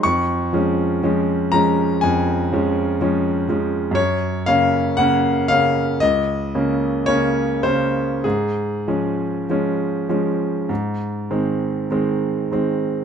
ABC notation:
X:1
M:4/4
L:1/8
Q:1/4=58
K:Db
V:1 name="Grand piano"
d'3 b a2 z2 | d f g f e2 d c | A6- A z |]
V:2 name="Grand piano" clef=bass
F,, [F,A,D] [F,A,D] [F,A,D] F,, [F,A,D] [F,A,D] [F,A,D] | G,, [D,B,D] [D,B,D] [D,B,D] D,, [D,B,D] [D,B,D] [D,B,D] | A,, [F,A,D] [F,A,D] [F,A,D] A,, [E,A,C] [E,A,C] [E,A,C] |]